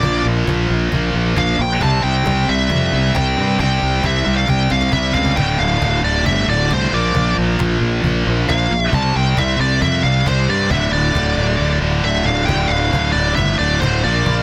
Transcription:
Already playing: A#2 F3 A#3 D5
0.03 A#1, cajon bass
0.25 A#1
0.47 A#1, cajon bass, cajon slap
0.70 A#1, cajon slap
0.92 A#1 A#2 F3 A#3, cajon bass
1.14 A#1 A#2 F3 A#3, cajon slap
1.36 A#1 A#2 F3 A#3 F5, cajon bass, cajon slap
1.59 A#1 G5, cajon slap
1.71 cajon slap
1.81 C2 C3 G3 C4 A5, cajon bass
2.03 C2 G5
2.26 C2, cajon bass, cajon slap
2.48 C2 E5, cajon slap
2.70 F2, cajon bass
2.93 C2 C3 G3 C4, cajon slap
3.15 C2 C3 G3 C4 G5, cajon bass, cajon slap
3.37 G2 C3 G3 C4, cajon slap
3.49 cajon slap
3.59 C2 C3 G3 C4 G5, cajon bass
3.82 C2, cajon slap
4.04 C2 E5, cajon bass, cajon slap
4.26 C2
4.37 F5
4.48 C2 G5, cajon bass, cajon slap
4.70 C2 C3 G3 C4 F5, cajon slap
4.81 cajon slap
4.92 C2 C3 G3 E5, cajon bass, cajon slap
4.96 C4
5.14 C#2 C3 G3 C4 F5, cajon bass
5.25 cajon bass
5.36 D1 D2 A2 D3 G5, cajon bass
5.59 D1 F5, cajon slap
5.82 D1, cajon bass, cajon slap
6.04 D1 D5
6.26 G1 E5, cajon bass
6.48 D1 D2 A2 D3 D5
6.70 C2 D2 A2 D3 C5, cajon bass, cajon slap
6.92 A#1 A#2 F3 A#3 D5, cajon slap
7.04 cajon slap
7.15 A#1, cajon bass
7.37 A#1, cajon slap
7.48 cajon slap
7.59 A#1, cajon bass, cajon slap
7.81 A#1, cajon slap
8.04 A#1 A#2 F3 A#3, cajon bass
8.26 A#1 A#2 F3 A#3, cajon slap
8.38 cajon slap
8.48 A#1 A#2 F3 A#3 F5, cajon bass, cajon slap
8.71 A#1, cajon slap
8.82 E5, cajon slap
8.93 C2 C3 G3 C4 A5, cajon bass
9.04 cajon slap
9.16 C2 G5, cajon slap
9.37 C2 E5, cajon bass, cajon slap
9.59 C2 D5, cajon slap
9.71 cajon slap
9.82 F2 E5, cajon bass
10.03 C2 C3 G3 C4 F5, cajon slap
10.25 C2 C3 G3 C4 C5, cajon bass, cajon slap
10.48 G2 C3 G3 C4 D5
10.60 cajon slap
10.70 D1 D2 A2 D3 E5, cajon bass
10.92 D1 D5, cajon slap
11.15 D1, cajon bass, cajon slap
11.37 D1, cajon slap
11.59 D1, cajon slap
11.82 D1 D2 A2 D3, cajon slap
11.94 cajon slap
12.04 D1 D2 A2 D3 E5, cajon slap
12.16 cajon slap
12.25 D1 D2 A2 D3 F5, cajon slap
12.45 D1 D2 A2 G5, cajon bass
12.51 D3
12.67 D1 F5, cajon slap
12.93 D1, cajon bass, cajon slap
13.12 D1 D5, cajon slap
13.27 cajon slap
13.35 G1 E5, cajon bass
13.59 D1 D2 A2 D3 D5, cajon slap
13.80 D1 D2 A2 C5, cajon bass, cajon slap
13.84 D3
14.04 A#1 A#2 F3 A#3 D5, cajon slap
14.26 A#1, cajon bass

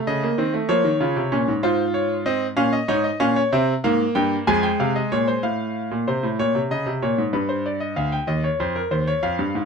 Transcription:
Already playing: A3
0.07 C#3 D#5
0.23 A#3
0.38 D#3 C4
0.54 A3
0.69 F3 A#3 C#5
0.85 D#3
1.00 C#3 F4
1.16 C3
1.32 A#2 C#4
1.48 G#2
1.63 G#2 F4 C5
1.94 C#5
2.26 C4 D#5
2.56 A#2 C#4 F5
2.73 D#5
2.88 G#2 D#4 C#5
3.04 D#5
3.20 A#2 C#4 F5
3.36 C#5
3.52 C3 C4 E5
3.84 G#2 A#3 F5
4.15 G2 G5
4.47 F2 G#3 G#5
4.63 G5
4.80 C3 F5
4.96 D#5
5.12 A#2 C#5
5.28 C5
5.43 A2 F5
5.91 A#2
6.08 C3 C5
6.23 A2
6.39 A#2 C#5
6.55 C3
6.71 C#3 D#5
6.86 C3
7.02 A#2 C#5
7.18 G#2
7.33 G2 B4
7.49 C5
7.66 D5
7.80 D#5
7.96 D2 F5
8.12 G5
8.27 D#2 D#5
8.44 C#5
8.60 F2 C5
8.76 A#4
8.91 D#2 C5
9.07 C#5
9.23 F2 F5
9.39 G2
9.55 G#2

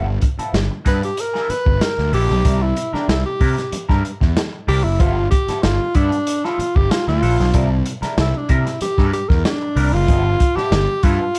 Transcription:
Already playing: G1
0.07 muted clean electric guitar stroke
0.21 muted clean electric guitar stroke, kick, closed hi-hat
0.39 F3 B3 E4 A4, muted picked electric bass stroke, closed hi-hat
0.53 G1, snare, closed hi-hat
0.71 muted clean electric guitar stroke
0.85 G2 F3 B3 E4 A4 B4, kick, closed hi-hat
1.02 G4, muted clean electric guitar stroke, closed hi-hat
1.17 A#4, muted clean electric guitar stroke, closed hi-hat
1.33 F3 B3 E4 A4, snare
1.49 B4, muted clean electric guitar stroke, muted picked electric bass stroke, closed hi-hat
1.66 G1, muted clean electric guitar stroke, kick
1.81 A#4, snare, closed hi-hat
1.98 D2, muted clean electric guitar stroke, snare
2.12 A#1 F3 B3 E4 G4 A4, open hi-hat
2.29 B1, muted clean electric guitar stroke, snare
2.44 C2 G3 D4 E4 A#4, kick, closed hi-hat
2.61 E4, muted clean electric guitar stroke
2.76 muted clean electric guitar stroke, closed hi-hat
2.93 G3 D4 E4 A#4, muted picked electric bass stroke, snare
3.09 C2 E4, snare, closed hi-hat
3.25 G4, muted clean electric guitar stroke
3.40 C3 G3 D4 E4 A#4, kick, open hi-hat
3.57 muted clean electric guitar stroke, snare, closed hi-hat
3.72 muted picked electric bass stroke, muted clean electric guitar stroke, closed hi-hat
3.89 G2 G3 D4 E4 A#4, kick, snare
4.04 muted clean electric guitar stroke, closed hi-hat
4.21 E2, muted clean electric guitar stroke, kick, snare
4.37 snare, closed hi-hat
4.53 muted clean electric guitar stroke
4.67 C2 G3 D4 E4 G4 A#4, open hi-hat
4.83 F#1 E4, muted clean electric guitar stroke
4.99 G1 F3 B3 E4 F4 A4, kick, closed hi-hat
5.17 muted clean electric guitar stroke
5.31 G4, muted clean electric guitar stroke, kick, closed hi-hat
5.48 F3 B3 E4 A4, muted picked electric bass stroke, snare, closed hi-hat
5.63 G1 F4, snare, closed hi-hat
5.81 muted clean electric guitar stroke
5.95 G2 F3 B3 D4 E4 A4, kick, closed hi-hat
6.12 muted clean electric guitar stroke, closed hi-hat
6.27 muted clean electric guitar stroke, closed hi-hat
6.44 F3 B3 E4 F4 A4, snare
6.59 muted picked electric bass stroke, muted clean electric guitar stroke, closed hi-hat
6.76 G1 G4, muted clean electric guitar stroke, kick
6.91 F4, snare, closed hi-hat
7.07 D2 F4, muted clean electric guitar stroke, snare
7.22 A#1 F3 B3 E4 A4, open hi-hat
7.39 B1, muted clean electric guitar stroke, snare
7.54 C2 G3 D4 E4 A#4, kick, closed hi-hat
7.71 muted clean electric guitar stroke
7.86 muted clean electric guitar stroke, closed hi-hat
8.02 G3 D4 E4 A#4, muted picked electric bass stroke, snare, closed hi-hat
8.18 C2 E4, snare, closed hi-hat
8.35 D4, muted clean electric guitar stroke
8.49 C3 G3 D4 E4 A#4, kick, closed hi-hat
8.66 muted clean electric guitar stroke, snare, closed hi-hat
8.81 G4, muted clean electric guitar stroke, muted picked electric bass stroke, closed hi-hat
8.98 G2 G3 D4 E4 A#4, kick, snare
9.13 G4, muted clean electric guitar stroke, closed hi-hat
9.28 E2 A#4, muted clean electric guitar stroke, kick, snare
9.45 D4, snare, closed hi-hat
9.62 muted clean electric guitar stroke
9.76 C2 G3 D4 E4 A#4, open hi-hat
9.93 F#1 F4, muted clean electric guitar stroke
10.08 G1 F3 B3 E4 A4, kick, closed hi-hat
10.39 muted clean electric guitar stroke, kick, closed hi-hat
10.56 F3 B3 E4 G4 A4, muted picked electric bass stroke, snare
10.72 G1, snare, closed hi-hat
10.88 muted clean electric guitar stroke
11.03 G2 F3 B3 E4 F4 A4, kick, closed hi-hat
11.20 muted clean electric guitar stroke
11.35 muted clean electric guitar stroke, closed hi-hat

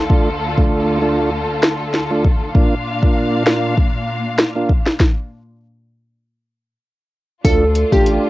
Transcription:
Already playing: D2 D3 A3 F4 A4
0.10 A3 D4 F4, kick
0.57 A3 D4 F4, kick
1.02 A3 D4 F4
1.63 cross-stick, snare
1.94 snare
2.11 A3 D4 F4
2.25 kick
2.55 A#2 A#3 D4 F4 F5, kick
3.03 A#3 D4 F4, kick
3.46 A#3 D4 F4, cross-stick, snare
3.78 kick
4.38 cross-stick, snare
4.56 A#3 D4 F4
4.69 kick
4.86 snare
5.00 kick, snare
7.44 D2 A3 D4 F4 A4, kick, closed hi-hat
7.75 closed hi-hat
7.92 A1 A3 D4 F4 G4, kick
8.06 closed hi-hat

